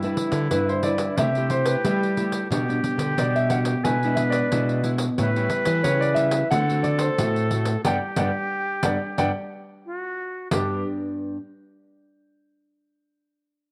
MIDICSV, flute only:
0, 0, Header, 1, 2, 480
1, 0, Start_track
1, 0, Key_signature, 1, "major"
1, 0, Tempo, 666667
1, 1813, Time_signature, 4, 2, 24, 8
1, 9878, End_track
2, 0, Start_track
2, 0, Title_t, "Flute"
2, 0, Program_c, 0, 73
2, 0, Note_on_c, 0, 64, 92
2, 838, Note_on_c, 0, 67, 99
2, 849, Note_off_c, 0, 64, 0
2, 1805, Note_off_c, 0, 67, 0
2, 1810, Note_on_c, 0, 67, 100
2, 2765, Note_on_c, 0, 71, 100
2, 2775, Note_off_c, 0, 67, 0
2, 3535, Note_off_c, 0, 71, 0
2, 3741, Note_on_c, 0, 71, 113
2, 4669, Note_off_c, 0, 71, 0
2, 4694, Note_on_c, 0, 69, 102
2, 5625, Note_off_c, 0, 69, 0
2, 5647, Note_on_c, 0, 67, 100
2, 6867, Note_off_c, 0, 67, 0
2, 7097, Note_on_c, 0, 66, 79
2, 7547, Note_off_c, 0, 66, 0
2, 7574, Note_on_c, 0, 62, 67
2, 7797, Note_off_c, 0, 62, 0
2, 9878, End_track
0, 0, End_of_file